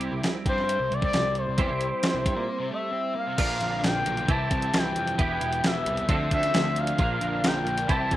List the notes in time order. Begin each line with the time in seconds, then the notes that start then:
Already playing: C3 G3 C4 E4 G4
0.01 closed hi-hat
0.12 C2 C3
0.23 muted distorted electric guitar stroke, snare, closed hi-hat
0.46 G2 G3 G4 C5, kick, closed hi-hat
0.58 snare
0.69 closed hi-hat
0.79 C2 C3
0.91 C2 C3 D5, closed hi-hat
1.02 C2 C3 C4 D5, kick
1.13 C2 C3, snare, closed hi-hat
1.25 C2 C3
1.35 C5, closed hi-hat
1.46 C2 C3
1.58 E2 E3 G3 C4 E4 G4, kick, closed hi-hat
1.69 C2 C3
1.81 closed hi-hat
2.03 snare, closed hi-hat
2.15 C2 C3
2.25 G2 G3 G4, kick, closed hi-hat
2.36 A#2 A#3 A#4
2.59 C3 C4
2.70 A3 A4 E5
2.92 C4 C5
3.15 A#3 A#4 F5
3.27 C3 C4
3.38 A#1 A#2 F3 A#3 D4 F4 A#4 D5, kick, closed hi-hat, crash
3.61 A#1 D3, closed hi-hat
3.83 A#1 D3 G5, snare, closed hi-hat
4.06 B1 A#3, closed hi-hat
4.17 closed hi-hat
4.28 C2 C3 E3 C4 E4 G4 E5 G5 A5, kick, closed hi-hat
4.51 C2 G3, kick, closed hi-hat
4.62 closed hi-hat
4.74 C2 E3, snare, closed hi-hat
4.78 G5
4.96 F2 G3, closed hi-hat
5.07 closed hi-hat
5.18 E1 E2 E3 B3 E4 G4 G5 B5, kick, closed hi-hat
5.41 E1 B2, closed hi-hat
5.53 closed hi-hat
5.64 E1 E3 E5, snare, closed hi-hat
5.86 C2 G3, closed hi-hat
5.97 closed hi-hat
6.09 D2 D3 F3 C4 D4 F4 A4 C5, kick, closed hi-hat
6.31 D2 A3 E5, kick, closed hi-hat
6.43 snare, closed hi-hat
6.54 D2 D3, snare, closed hi-hat
6.76 A3 F5, closed hi-hat
6.87 closed hi-hat
6.98 A#1 A#2 F3 A#3 D4 A#4 D5, kick, closed hi-hat
7.21 A#1 D3, closed hi-hat
7.44 A#1 D3 G5, snare, closed hi-hat
7.66 A#1 A#3, closed hi-hat
7.78 closed hi-hat
7.88 C2 C3 E3 C4 E4 G4 E5 G5 A5, kick, closed hi-hat
8.11 C2 G3 G5, kick, closed hi-hat